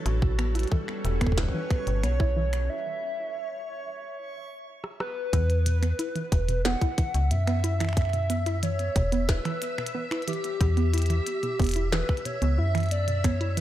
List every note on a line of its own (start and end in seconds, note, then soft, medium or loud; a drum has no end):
0.00 2.17 E4 medium
0.00 2.69 A4 medium
0.00 2.69 B4 medium
0.00 2.69 C#5 medium
0.06 0.66 A1 loud
0.06 2.69 G3 medium
0.06 0.68 F#4 medium
0.06 finger snap medium
0.06 closed hi-hat medium
0.22 0.34 B2 medium
0.22 kick loud
0.31 2.69 F#4 medium
0.39 0.54 B3 loud
0.39 finger snap medium
0.39 closed hi-hat soft
0.55 0.67 E4 loud
0.55 closed hi-hat soft
0.59 2.69 C#4 medium
0.59 closed hi-hat soft
0.63 closed hi-hat soft
0.68 closed hi-hat soft
0.72 0.79 E3 loud
0.72 1.39 A4 medium
0.72 kick loud
0.88 finger snap medium
1.05 1.48 E1 loud
1.05 1.17 B2 medium
1.05 closed hi-hat medium
1.21 1.37 B3 loud
1.21 finger snap medium
1.21 kick medium
1.21 closed hi-hat medium
1.27 kick medium
1.32 kick medium
1.38 1.49 E4 loud
1.38 2.03 B4 loud
1.38 kick medium
1.38 snare loud
1.38 closed hi-hat medium
1.43 kick soft
1.49 kick soft
1.54 1.61 E3 loud
1.70 finger snap medium
1.70 kick loud
1.70 closed hi-hat soft
1.87 2.05 G1 medium
1.87 1.99 B2 medium
1.87 closed hi-hat soft
2.03 2.69 B1 medium
2.03 2.19 B3 loud
2.03 2.71 C#5 loud
2.03 finger snap medium
2.03 closed hi-hat medium
2.20 2.32 E4 loud
2.20 kick loud
2.36 2.44 E3 loud
2.53 finger snap medium
2.53 closed hi-hat soft
2.69 4.01 E5 loud
4.84 cross-stick medium
5.00 6.61 B4 loud
5.00 cross-stick medium
5.33 5.93 E2 loud
5.33 5.40 E3 loud
5.33 kick loud
5.33 closed hi-hat medium
5.50 closed hi-hat soft
5.66 5.78 B2 medium
5.66 closed hi-hat medium
5.83 5.98 B3 loud
5.83 finger snap soft
5.83 closed hi-hat medium
5.99 6.11 E4 loud
5.99 closed hi-hat medium
6.15 6.23 E3 loud
6.15 13.61 E5 medium
6.15 closed hi-hat soft
6.32 6.76 E1 loud
6.32 kick loud
6.32 closed hi-hat medium
6.48 6.60 B2 medium
6.48 closed hi-hat medium
6.65 6.81 B3 loud
6.65 7.33 F#5 loud
6.65 snare loud
6.65 closed hi-hat medium
6.81 6.93 E4 loud
6.81 kick loud
6.81 closed hi-hat soft
6.98 7.05 E3 loud
6.98 kick loud
6.98 closed hi-hat medium
7.14 7.33 C#2 medium
7.14 closed hi-hat medium
7.31 8.90 F#2 medium
7.31 7.43 B2 medium
7.31 7.96 E5 loud
7.31 closed hi-hat medium
7.47 7.63 B3 loud
7.47 finger snap medium
7.47 closed hi-hat soft
7.64 7.76 E4 loud
7.64 closed hi-hat medium
7.80 7.88 E3 loud
7.80 finger snap medium
7.80 closed hi-hat medium
7.85 finger snap medium
7.89 finger snap medium
7.93 finger snap soft
7.97 8.59 E5 loud
7.97 finger snap soft
7.97 kick loud
7.97 closed hi-hat medium
8.01 finger snap soft
8.05 finger snap soft
8.09 finger snap soft
8.13 8.25 B2 medium
8.13 closed hi-hat soft
8.30 8.46 B3 loud
8.30 closed hi-hat medium
8.46 8.58 E4 loud
8.46 finger snap soft
8.46 closed hi-hat medium
8.63 8.70 E3 loud
8.63 9.25 C#5 loud
8.63 closed hi-hat medium
8.79 closed hi-hat soft
8.96 9.39 E1 loud
8.96 9.08 B2 medium
8.96 kick loud
8.96 closed hi-hat medium
9.12 9.28 B3 loud
9.12 closed hi-hat medium
9.29 9.41 E4 loud
9.29 10.24 B4 loud
9.29 kick loud
9.29 snare loud
9.29 closed hi-hat medium
9.45 9.52 E3 loud
9.45 finger snap medium
9.45 closed hi-hat soft
9.62 closed hi-hat medium
9.78 9.90 B2 medium
9.78 finger snap medium
9.87 closed hi-hat medium
9.95 10.10 B3 loud
10.11 10.23 E4 loud
10.11 finger snap medium
10.11 closed hi-hat soft
10.22 closed hi-hat soft
10.28 10.35 E3 loud
10.28 11.89 G4 loud
10.28 closed hi-hat medium
10.33 closed hi-hat soft
10.44 closed hi-hat medium
10.61 11.21 E2 loud
10.61 10.73 B2 medium
10.61 kick loud
10.61 closed hi-hat medium
10.77 10.93 B3 loud
10.77 closed hi-hat soft
10.94 11.05 E4 loud
10.94 closed hi-hat medium
10.98 closed hi-hat medium
11.02 closed hi-hat medium
11.06 closed hi-hat soft
11.10 11.17 E3 loud
11.10 finger snap soft
11.10 closed hi-hat medium
11.27 closed hi-hat medium
11.43 11.55 B2 medium
11.43 closed hi-hat soft
11.59 12.03 E1 loud
11.59 11.75 B3 loud
11.59 kick loud
11.59 closed hi-hat soft
11.62 closed hi-hat soft
11.64 closed hi-hat soft
11.67 closed hi-hat medium
11.69 closed hi-hat medium
11.71 closed hi-hat medium
11.74 11.88 E4 loud
11.74 closed hi-hat medium
11.76 closed hi-hat medium
11.92 12.00 E3 loud
11.92 12.27 B4 loud
11.92 snare loud
11.92 closed hi-hat medium
12.09 finger snap medium
12.09 kick loud
12.17 closed hi-hat soft
12.25 12.37 B2 medium
12.25 12.58 C#5 loud
12.25 closed hi-hat medium
12.42 12.60 C#2 medium
12.42 12.58 B3 loud
12.42 closed hi-hat medium
12.58 13.61 F#2 medium
12.58 12.70 E4 loud
12.58 12.89 E5 loud
12.75 12.82 E3 loud
12.75 finger snap medium
12.75 closed hi-hat soft
12.78 closed hi-hat soft
12.83 closed hi-hat soft
12.86 closed hi-hat soft
12.89 closed hi-hat soft
12.91 13.26 D5 loud
12.91 closed hi-hat medium
13.08 13.20 B2 medium
13.08 closed hi-hat medium
13.24 13.40 B3 loud
13.24 13.57 C#5 loud
13.24 finger snap medium
13.24 kick loud
13.24 closed hi-hat medium
13.41 13.53 E4 loud
13.41 closed hi-hat soft
13.57 13.61 E3 loud
13.57 13.61 B4 loud
13.57 closed hi-hat medium